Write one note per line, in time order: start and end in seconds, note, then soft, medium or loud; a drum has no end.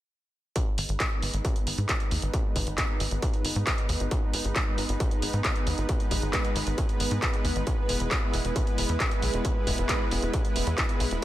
0.56 11.24 G#3 medium
0.56 11.24 B3 medium
0.56 7.63 D#4 medium
0.56 11.24 B4 medium
0.56 kick loud
0.56 closed hi-hat medium
0.78 0.86 G#1 medium
0.78 open hi-hat loud
0.89 0.97 G#1 medium
0.89 closed hi-hat soft
1.00 kick loud
1.00 clap loud
1.00 closed hi-hat medium
1.22 1.30 G#1 medium
1.22 open hi-hat medium
1.34 1.42 G#1 medium
1.34 closed hi-hat medium
1.45 kick loud
1.45 closed hi-hat medium
1.56 closed hi-hat soft
1.67 1.75 G#1 medium
1.67 open hi-hat medium
1.78 1.86 G#2 medium
1.78 closed hi-hat soft
1.89 kick loud
1.89 clap loud
1.89 closed hi-hat medium
2.00 closed hi-hat soft
2.11 2.19 D#2 medium
2.11 open hi-hat medium
2.22 2.30 G#1 medium
2.22 closed hi-hat medium
2.34 kick loud
2.34 closed hi-hat medium
2.56 2.64 G#1 medium
2.56 kick medium
2.56 open hi-hat loud
2.67 2.75 G#1 medium
2.67 closed hi-hat soft
2.78 kick loud
2.78 clap loud
2.78 closed hi-hat medium
3.00 3.08 G#1 medium
3.00 open hi-hat medium
3.11 3.19 G#1 medium
3.11 closed hi-hat medium
3.22 kick loud
3.22 closed hi-hat medium
3.34 closed hi-hat soft
3.45 3.53 G#1 medium
3.45 open hi-hat loud
3.56 3.64 G#2 medium
3.56 closed hi-hat soft
3.67 kick loud
3.67 clap loud
3.67 closed hi-hat medium
3.78 closed hi-hat soft
3.89 3.97 D#2 medium
3.89 open hi-hat medium
4.00 4.08 G#1 medium
4.00 closed hi-hat soft
4.11 kick loud
4.11 closed hi-hat medium
4.33 4.42 G#1 medium
4.33 open hi-hat loud
4.45 4.53 G#1 medium
4.45 closed hi-hat soft
4.56 kick loud
4.56 clap loud
4.56 closed hi-hat medium
4.78 4.86 G#1 medium
4.78 open hi-hat medium
4.89 4.97 G#1 medium
4.89 closed hi-hat soft
5.00 kick loud
5.00 closed hi-hat medium
5.11 closed hi-hat soft
5.22 5.30 G#1 medium
5.22 open hi-hat loud
5.33 5.41 G#2 medium
5.33 closed hi-hat soft
5.45 kick loud
5.45 clap loud
5.45 closed hi-hat medium
5.56 closed hi-hat soft
5.67 5.75 D#2 medium
5.67 open hi-hat medium
5.78 5.86 G#1 medium
5.78 closed hi-hat soft
5.89 kick loud
5.89 closed hi-hat medium
6.00 closed hi-hat soft
6.11 6.19 G#1 medium
6.11 kick medium
6.11 open hi-hat loud
6.22 6.30 G#1 medium
6.22 closed hi-hat soft
6.33 kick loud
6.33 clap loud
6.33 closed hi-hat medium
6.45 closed hi-hat soft
6.56 6.64 G#1 medium
6.56 open hi-hat medium
6.67 6.75 G#1 medium
6.67 closed hi-hat soft
6.78 kick loud
6.78 closed hi-hat medium
6.89 closed hi-hat soft
7.00 7.08 G#1 medium
7.00 open hi-hat loud
7.11 7.19 G#2 medium
7.11 closed hi-hat soft
7.22 kick loud
7.22 clap loud
7.22 closed hi-hat medium
7.33 closed hi-hat soft
7.45 7.53 D#2 loud
7.45 open hi-hat medium
7.56 7.64 G#1 medium
7.56 closed hi-hat soft
7.67 11.24 E4 medium
7.67 kick loud
7.67 closed hi-hat medium
7.89 7.97 E1 medium
7.89 open hi-hat loud
8.00 8.08 E1 medium
8.00 closed hi-hat soft
8.11 kick loud
8.11 clap loud
8.11 closed hi-hat medium
8.33 8.42 E1 loud
8.33 open hi-hat medium
8.45 8.53 E1 medium
8.45 closed hi-hat medium
8.56 kick loud
8.56 closed hi-hat medium
8.67 closed hi-hat soft
8.78 8.86 E1 medium
8.78 open hi-hat loud
8.89 8.97 E2 medium
8.89 closed hi-hat soft
9.00 kick loud
9.00 clap loud
9.00 closed hi-hat medium
9.11 closed hi-hat soft
9.22 9.30 B1 loud
9.22 open hi-hat medium
9.34 9.42 E1 medium
9.34 closed hi-hat soft
9.45 kick loud
9.45 closed hi-hat medium
9.67 9.75 E1 medium
9.67 kick medium
9.67 open hi-hat medium
9.78 9.86 E1 medium
9.78 closed hi-hat soft
9.89 kick loud
9.89 clap loud
9.89 closed hi-hat medium
10.11 10.19 E1 medium
10.11 open hi-hat medium
10.22 10.30 E1 medium
10.22 closed hi-hat soft
10.34 kick loud
10.34 closed hi-hat medium
10.45 closed hi-hat soft
10.56 10.64 E1 medium
10.56 open hi-hat loud
10.67 10.75 E2 medium
10.67 closed hi-hat soft
10.78 kick loud
10.78 clap loud
10.78 closed hi-hat medium
10.89 closed hi-hat soft
11.00 11.08 B1 medium
11.00 open hi-hat medium
11.11 11.19 E1 medium
11.11 closed hi-hat soft